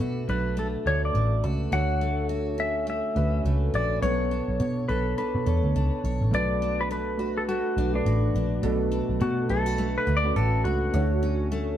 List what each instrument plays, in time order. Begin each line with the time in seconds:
Already playing: steel-string acoustic guitar B2 A3 D4, synth keys A3 D4 F#4 B4 D5
0.00 picked electric bass B2, steel-string acoustic guitar F#4
0.29 picked electric bass B1, steel-string acoustic guitar D4, electric slide guitar B4
0.57 steel-string acoustic guitar A3, electric slide guitar A4
0.86 picked electric bass D2, synth keys A3 D4 F#4 D5, steel-string acoustic guitar D4, electric slide guitar C#5
1.05 electric slide guitar D5
1.14 picked electric bass A1, steel-string acoustic guitar A3
1.43 picked electric bass C#2, steel-string acoustic guitar F#4
1.71 picked electric bass D2, steel-string acoustic guitar D3 F#4, synth keys A3 D4 F#4 C#5, electric slide guitar F#5
2.01 steel-string acoustic guitar A3
2.29 steel-string acoustic guitar F#4
2.58 steel-string acoustic guitar C#4, electric slide guitar E5
2.87 steel-string acoustic guitar A3, electric slide guitar E5
3.15 picked electric bass D2, synth keys A3 D4 F#4 B4, steel-string acoustic guitar C#4
3.45 picked electric bass C#2, steel-string acoustic guitar A3
3.74 picked electric bass A#1, steel-string acoustic guitar F#4, electric slide guitar D5
4.01 picked electric bass B1, synth keys B3 D4 A4 C#5, steel-string acoustic guitar B3 C#5, electric slide guitar C#5
4.31 steel-string acoustic guitar D4
4.48 picked electric bass B1
4.60 picked electric bass B2, steel-string acoustic guitar C#5
4.88 picked electric bass B1, steel-string acoustic guitar A4, electric slide guitar B4
5.18 steel-string acoustic guitar D4, electric slide guitar B4
5.35 picked electric bass B2
5.45 picked electric bass E2, synth keys B3 D4 A4 C#5, steel-string acoustic guitar A4
5.63 picked electric bass D2
5.75 picked electric bass C#2, steel-string acoustic guitar D4
6.04 picked electric bass B1, steel-string acoustic guitar C#5
6.21 picked electric bass A1
6.32 picked electric bass B1, steel-string acoustic guitar B2, synth keys A3 D4 F#4 B4, electric slide guitar D5
6.62 steel-string acoustic guitar D4
6.81 electric slide guitar B4
6.91 steel-string acoustic guitar A3, electric slide guitar B4
7.17 synth keys A3 D4 F#4 B4, steel-string acoustic guitar F#4
7.37 electric slide guitar A4
7.49 steel-string acoustic guitar A3, electric slide guitar F#4
7.77 picked electric bass B1, steel-string acoustic guitar D4
7.93 synth keys A3 D4 F#4 B4, electric slide guitar D4
8.06 picked electric bass A1, steel-string acoustic guitar F#4
8.34 picked electric bass A#1, steel-string acoustic guitar D4
8.62 picked electric bass B1, steel-string acoustic guitar B2, synth keys A3 D4 F#4 A4
8.92 steel-string acoustic guitar D4
9.09 picked electric bass B1
9.21 picked electric bass B2, steel-string acoustic guitar A3, electric slide guitar F#4
9.48 picked electric bass B1, synth keys A3 D4 F#4 B4, steel-string acoustic guitar E4, electric slide guitar A4
9.66 steel-string acoustic guitar F#4
9.78 steel-string acoustic guitar A3
9.98 electric slide guitar B4
10.07 picked electric bass D2, steel-string acoustic guitar D4
10.17 electric slide guitar D5
10.23 synth keys A3 C#4 F#4 B4
10.31 synth keys D4
10.36 picked electric bass A1, steel-string acoustic guitar F#4, electric slide guitar A4
10.64 picked electric bass C#2, steel-string acoustic guitar D4, electric slide guitar F#4
10.93 picked electric bass D2, steel-string acoustic guitar D3, synth keys A3 D4 E4 C#5
11.01 synth keys F#4
11.23 steel-string acoustic guitar C#4
11.52 steel-string acoustic guitar A3